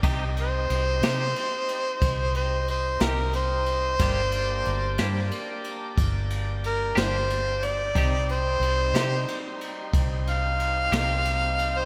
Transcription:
<<
  \new Staff \with { instrumentName = "Harmonica" } { \time 12/8 \key c \dorian \tempo 4. = 61 r8 c''2. c''8 c''8 bes'8 c''4~ | c''2 r2 bes'8 c''4 d''8~ | d''8 c''2 r4 f''2~ f''16 c''16 | }
  \new Staff \with { instrumentName = "Tonewheel organ" } { \time 12/8 \key c \dorian <c' ees' g' ees''>1. | <bes d' g' d''>1. | <c' ees' g' c''>1. | }
  \new Staff \with { instrumentName = "Clean electric guitar" } { \time 12/8 \key c \dorian <c c' ees' g'>8 r4 <c c' ees' g'>8 r2 r8 <c c' ees' g'>8 r4 | <g bes d' g'>8 r4 <g bes d' g'>8 r2 r8 <g bes d' g'>8 r4 | <c c' ees' g'>8 r4 <c c' ees' g'>8 r2 r8 <c c' ees' g'>8 r4 | }
  \new Staff \with { instrumentName = "Accordion" } { \time 12/8 \key c \dorian r1. | r1. | <g c' ees'>1. | }
  \new Staff \with { instrumentName = "Fingered electric bass" } { \clef bass \time 12/8 \key c \dorian c,4 c,8 c8 r4 c,4. c,4. | g,,4 g,,8 g,8 r4 g,,4. g,,4. | c,4 c,8 c8 r4 c,4. c,4. | }
  \new DrumStaff \with { instrumentName = "Drums" } \drummode { \time 12/8 <bd cymr>8 cymr8 cymr8 <cymr sn>8 cymr8 cymr8 <bd cymr>8 cymr8 cymr8 <cymr sn>8 cymr8 cymr8 | <bd cymr>8 cymr8 cymr8 <cymr sn>8 cymr8 cymr8 <bd cymr>8 cymr8 cymr8 <cymr sn>8 cymr8 cymr8 | <bd cymr>8 cymr8 cymr8 <cymr sn>8 cymr8 cymr8 <bd cymr>8 cymr8 cymr8 <cymr sn>8 cymr8 cymr8 | }
>>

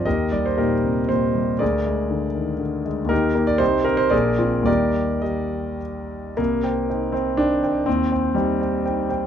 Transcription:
\new Staff \with { instrumentName = "Grand piano" } { \time 3/4 \key ees \major \tempo 4 = 120 << { <g' bes' ees''>8 d''16 c''16 <ees' g' bes'>4 c''4 | <aes' bes' d''>2~ <aes' bes' d''>8 r8 | <ees' g' bes'>8. d''16 <ees' g' c''>8 bes'16 c''16 <aes' bes' d''>4 | <g' bes' d''>4 <g' bes' ees''>4 r4 |
\key c \minor bes4. c'8 d'4 | c'4 g4. r8 | } \\ { ees,8 g8 bes,8 c8 bes,8 g8 | d,8 aes8 d8 ees8 d8 aes8 | ees,8 <bes ees'>8 c,8 <c' ees'>8 bes,,8 <c' f'>8 | <ees, g bes ees'>2. |
c,8 <c'' g''>8 <ees' c'' g''>8 <c'' g''>8 <ees' c'' g''>8 <c'' g''>8 | ees,8 <c'' g''>8 <ees' c'' g''>8 <c'' g''>8 <ees' c'' g''>8 <c'' g''>8 | } >> }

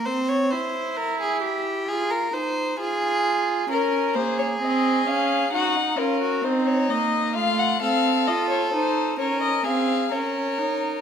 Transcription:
<<
  \new Staff \with { instrumentName = "Violin" } { \time 4/4 \key bes \minor \tempo 4 = 66 r1 | bes'8 c''16 des''16 ees''8 f''8 ges''8 bes'8 c''16 des''16 ees''8 | f''16 ges''16 f''8 ees''16 des''16 c''8 des''16 ees''16 f''8 des''4 | }
  \new Staff \with { instrumentName = "Violin" } { \time 4/4 \key bes \minor c''16 des''16 c''8 bes'16 aes'16 g'8 aes'16 bes'16 c''8 aes'4 | bes'8 aes'4. ges'16 ees'16 f'16 ges'16 ees'4 | f'8 a'4. bes'8 aes'8 bes'4 | }
  \new Staff \with { instrumentName = "Viola" } { \time 4/4 \key bes \minor c'8 e'4. f'8 ees'8 f'4 | des'8 bes8 c'8 des'8 ees'8 des'8 c'8 bes8 | a8 c'8 f'8 ees'8 des'8 c'8 des'8 ees'8 | }
>>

